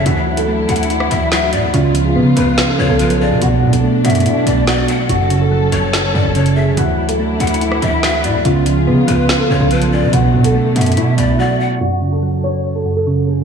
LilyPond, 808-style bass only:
\new Staff \with { instrumentName = "808-style bass" } { \clef bass \time 4/4 \key fis \minor \tempo 4 = 143 d,4. d,4 d,4 a,16 d,16 | cis,4 cis8 cis,8 r8 cis,16 b,,4 cis16 | b,,8 b,16 b,,16 r8 fis,8 b,8 b,,4 r8 | fis,,4. fis,,4 fis,16 fis,,4 e,,16 |
d,4. d,4 d,4 a,16 d,16 | cis,4 cis8 cis,8 r8 cis,16 b,,4 cis16 | b,,8 b,16 b,,16 r8 fis,8 b,8 b,,8 r4 | r1 | }